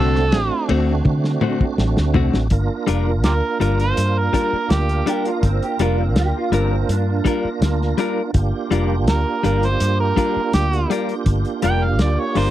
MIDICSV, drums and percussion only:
0, 0, Header, 1, 2, 480
1, 0, Start_track
1, 0, Key_signature, -2, "minor"
1, 0, Tempo, 729040
1, 1656, Time_signature, 4, 2, 24, 8
1, 8233, End_track
2, 0, Start_track
2, 0, Title_t, "Drums"
2, 100, Note_on_c, 9, 38, 34
2, 166, Note_off_c, 9, 38, 0
2, 212, Note_on_c, 9, 53, 56
2, 215, Note_on_c, 9, 38, 105
2, 278, Note_off_c, 9, 53, 0
2, 280, Note_off_c, 9, 38, 0
2, 455, Note_on_c, 9, 53, 68
2, 520, Note_off_c, 9, 53, 0
2, 691, Note_on_c, 9, 48, 67
2, 694, Note_on_c, 9, 36, 90
2, 756, Note_off_c, 9, 48, 0
2, 760, Note_off_c, 9, 36, 0
2, 817, Note_on_c, 9, 38, 61
2, 883, Note_off_c, 9, 38, 0
2, 929, Note_on_c, 9, 47, 79
2, 995, Note_off_c, 9, 47, 0
2, 1058, Note_on_c, 9, 36, 81
2, 1124, Note_off_c, 9, 36, 0
2, 1174, Note_on_c, 9, 38, 93
2, 1240, Note_off_c, 9, 38, 0
2, 1296, Note_on_c, 9, 38, 90
2, 1362, Note_off_c, 9, 38, 0
2, 1411, Note_on_c, 9, 43, 116
2, 1477, Note_off_c, 9, 43, 0
2, 1538, Note_on_c, 9, 38, 89
2, 1604, Note_off_c, 9, 38, 0
2, 1648, Note_on_c, 9, 42, 77
2, 1654, Note_on_c, 9, 36, 101
2, 1714, Note_off_c, 9, 42, 0
2, 1719, Note_off_c, 9, 36, 0
2, 1893, Note_on_c, 9, 42, 67
2, 1959, Note_off_c, 9, 42, 0
2, 2131, Note_on_c, 9, 42, 82
2, 2134, Note_on_c, 9, 38, 96
2, 2197, Note_off_c, 9, 42, 0
2, 2200, Note_off_c, 9, 38, 0
2, 2378, Note_on_c, 9, 42, 65
2, 2444, Note_off_c, 9, 42, 0
2, 2499, Note_on_c, 9, 42, 39
2, 2565, Note_off_c, 9, 42, 0
2, 2615, Note_on_c, 9, 42, 85
2, 2681, Note_off_c, 9, 42, 0
2, 2856, Note_on_c, 9, 36, 71
2, 2859, Note_on_c, 9, 42, 65
2, 2921, Note_off_c, 9, 36, 0
2, 2925, Note_off_c, 9, 42, 0
2, 3096, Note_on_c, 9, 42, 72
2, 3099, Note_on_c, 9, 38, 108
2, 3162, Note_off_c, 9, 42, 0
2, 3165, Note_off_c, 9, 38, 0
2, 3222, Note_on_c, 9, 42, 34
2, 3288, Note_off_c, 9, 42, 0
2, 3339, Note_on_c, 9, 42, 66
2, 3405, Note_off_c, 9, 42, 0
2, 3459, Note_on_c, 9, 42, 37
2, 3525, Note_off_c, 9, 42, 0
2, 3575, Note_on_c, 9, 42, 77
2, 3576, Note_on_c, 9, 36, 89
2, 3641, Note_off_c, 9, 36, 0
2, 3641, Note_off_c, 9, 42, 0
2, 3704, Note_on_c, 9, 42, 37
2, 3770, Note_off_c, 9, 42, 0
2, 3814, Note_on_c, 9, 42, 58
2, 3880, Note_off_c, 9, 42, 0
2, 4055, Note_on_c, 9, 42, 73
2, 4057, Note_on_c, 9, 38, 111
2, 4121, Note_off_c, 9, 42, 0
2, 4123, Note_off_c, 9, 38, 0
2, 4297, Note_on_c, 9, 42, 62
2, 4363, Note_off_c, 9, 42, 0
2, 4538, Note_on_c, 9, 42, 79
2, 4604, Note_off_c, 9, 42, 0
2, 4777, Note_on_c, 9, 36, 81
2, 4779, Note_on_c, 9, 42, 62
2, 4843, Note_off_c, 9, 36, 0
2, 4845, Note_off_c, 9, 42, 0
2, 5016, Note_on_c, 9, 42, 86
2, 5019, Note_on_c, 9, 38, 99
2, 5082, Note_off_c, 9, 42, 0
2, 5085, Note_off_c, 9, 38, 0
2, 5147, Note_on_c, 9, 38, 32
2, 5212, Note_off_c, 9, 38, 0
2, 5254, Note_on_c, 9, 42, 61
2, 5320, Note_off_c, 9, 42, 0
2, 5492, Note_on_c, 9, 42, 81
2, 5495, Note_on_c, 9, 36, 105
2, 5558, Note_off_c, 9, 42, 0
2, 5561, Note_off_c, 9, 36, 0
2, 5739, Note_on_c, 9, 42, 62
2, 5805, Note_off_c, 9, 42, 0
2, 5975, Note_on_c, 9, 42, 77
2, 5978, Note_on_c, 9, 38, 107
2, 6041, Note_off_c, 9, 42, 0
2, 6044, Note_off_c, 9, 38, 0
2, 6217, Note_on_c, 9, 42, 71
2, 6283, Note_off_c, 9, 42, 0
2, 6341, Note_on_c, 9, 42, 43
2, 6407, Note_off_c, 9, 42, 0
2, 6454, Note_on_c, 9, 42, 94
2, 6520, Note_off_c, 9, 42, 0
2, 6697, Note_on_c, 9, 36, 72
2, 6700, Note_on_c, 9, 42, 60
2, 6763, Note_off_c, 9, 36, 0
2, 6765, Note_off_c, 9, 42, 0
2, 6936, Note_on_c, 9, 42, 91
2, 6938, Note_on_c, 9, 38, 108
2, 7002, Note_off_c, 9, 42, 0
2, 7004, Note_off_c, 9, 38, 0
2, 7066, Note_on_c, 9, 42, 37
2, 7132, Note_off_c, 9, 42, 0
2, 7182, Note_on_c, 9, 42, 65
2, 7248, Note_off_c, 9, 42, 0
2, 7301, Note_on_c, 9, 42, 34
2, 7367, Note_off_c, 9, 42, 0
2, 7413, Note_on_c, 9, 42, 72
2, 7415, Note_on_c, 9, 36, 96
2, 7479, Note_off_c, 9, 42, 0
2, 7481, Note_off_c, 9, 36, 0
2, 7538, Note_on_c, 9, 42, 33
2, 7604, Note_off_c, 9, 42, 0
2, 7653, Note_on_c, 9, 42, 66
2, 7719, Note_off_c, 9, 42, 0
2, 7893, Note_on_c, 9, 42, 71
2, 7896, Note_on_c, 9, 38, 93
2, 7959, Note_off_c, 9, 42, 0
2, 7962, Note_off_c, 9, 38, 0
2, 8134, Note_on_c, 9, 46, 80
2, 8200, Note_off_c, 9, 46, 0
2, 8233, End_track
0, 0, End_of_file